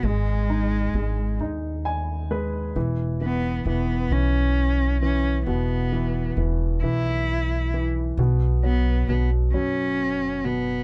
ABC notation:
X:1
M:6/8
L:1/8
Q:3/8=44
K:E
V:1 name="Cello"
G,3 z3 | z B, B, C2 C | B,2 z E2 z | z B, B, C2 B, |]
V:2 name="Upright piano"
z4 g B | z6 | z6 | z6 |]
V:3 name="Upright piano" clef=bass
G, D G, D2 G, | E, E, E, E,2 E, | B,, E, E, E,2 E, | B,, F, B,, F,2 B,, |]
V:4 name="Upright bass" clef=bass
G,,,2 G,,, D,,3 | E,,,2 E,,, B,,,3 | E,,,2 E,,, B,,,3 | B,,,2 B,,, F,,,3 |]